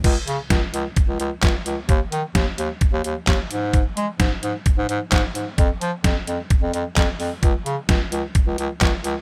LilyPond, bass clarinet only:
\new Staff \with { instrumentName = "Bass clarinet" } { \clef bass \time 4/4 \key des \lydian \tempo 4 = 130 des,16 r16 des16 r16 des,16 r16 des,16 r8 des,16 des,16 r16 des,16 r16 des,16 r16 | ees,16 r16 ees16 r16 ees,16 r16 ees,16 r8 ees,16 ees,16 r16 ees,16 r16 aes,8~ | aes,16 r16 aes16 r16 aes,16 r16 aes,16 r8 aes,16 aes,16 r16 aes,16 r16 aes,16 r16 | f,16 r16 f16 r16 f,16 r16 f,16 r8 f,16 f,16 r16 f,16 r16 f,16 r16 |
des,16 r16 des16 r16 des,16 r16 des,16 r8 des,16 des,16 r16 des,16 r16 des,16 r16 | }